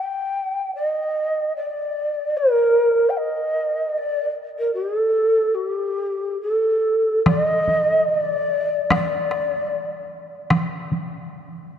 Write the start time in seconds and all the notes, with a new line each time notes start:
Already playing: G5
0.75 D#5
1.56 D5
2.37 A#4
3.09 G5
3.17 D#5
3.89 D#5
3.97 D5
4.58 A#4
4.73 G4
4.96 A4
5.54 F#4
5.67 G4
6.41 A4
7.26 D5, taiko rim, taiko high
7.42 D#5
7.68 taiko high
8.08 D#5
8.19 D5
8.90 D5, taiko rim, taiko high
9.31 taiko rim
10.50 taiko rim, taiko high
10.92 taiko high